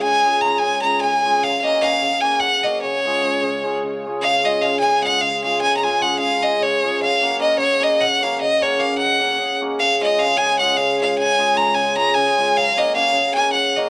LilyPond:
<<
  \new Staff \with { instrumentName = "Violin" } { \time 7/8 \key des \major \tempo 4 = 151 aes''4 bes''8 aes''8 bes''8 aes''4 | f''16. f''32 ees''8 f''4 aes''8 ges''8 ees''8 | des''2~ des''8 r4 | f''8 ees''8 f''8 aes''8 ges''8 f''8 f''8 |
aes''16. bes''32 aes''8 ges''8 f''8 ees''8 des''4 | f''4 ees''8 des''8 ees''8 ges''8 f''8 | ees''8 des''8 f''8 ges''4. r8 | f''8 ees''8 f''8 aes''8 ges''8 f''8 f''8 |
aes''4 bes''8 aes''8 bes''8 aes''4 | f''8 ees''8 f''4 aes''8 ges''8 ees''8 | }
  \new Staff \with { instrumentName = "Hammered dulcimer" } { \time 7/8 \key des \major r8 <aes des' f' aes'>8 <aes des' f' aes'>8 r8 <aes des' f' aes'>8 r8 <aes des' f' aes'>8 | r8 <bes des' ges' bes'>8 <bes des' ges' bes'>8 r8 <bes des' ges' bes'>8 r8 <bes des' ges' bes'>8 | r8 <aes des' f' aes'>8 <aes des' f' aes'>8 r8 <aes des' f' aes'>8 r8 <aes des' f' aes'>8 | r8 <aes des' f' aes'>8 <aes des' f' aes'>8 r8 <aes des' f' aes'>8 r8 <aes des' f' aes'>8 |
r8 <aes des' f' aes'>8 <aes des' f' aes'>8 r8 <aes des' f' aes'>8 r8 <aes des' f' aes'>8 | r8 <bes des' ges' bes'>8 <bes des' ges' bes'>8 r8 <bes des' ges' bes'>8 r8 <bes des' ges' bes'>8 | r8 <bes des' ges' bes'>8 <bes des' ges' bes'>8 r8 <bes des' ges' bes'>8 r8 <bes des' ges' bes'>8 | r8 <aes des' f' aes'>8 <aes des' f' aes'>8 r8 <aes des' f' aes'>8 r8 <aes des' f' aes'>8 |
r8 <aes des' f' aes'>8 <aes des' f' aes'>8 r8 <aes des' f' aes'>8 r8 <aes des' f' aes'>8 | r8 <bes des' ges' bes'>8 <bes des' ges' bes'>8 r8 <bes des' ges' bes'>8 r8 <bes des' ges' bes'>8 | }
  \new Staff \with { instrumentName = "Hammered dulcimer" } { \clef bass \time 7/8 \key des \major des4 r8 des4 des4 | ges4 r8 des4 ges4 | des4 r8 des4 des4 | des4 r8 des4 des4 |
des4 r8 des4 des4 | ges4 r8 des4 ges4 | des4 r8 ges4 des4 | des4 r8 des4 des4 |
des4 r8 des4 des4 | ges4 r8 des4 ges4 | }
>>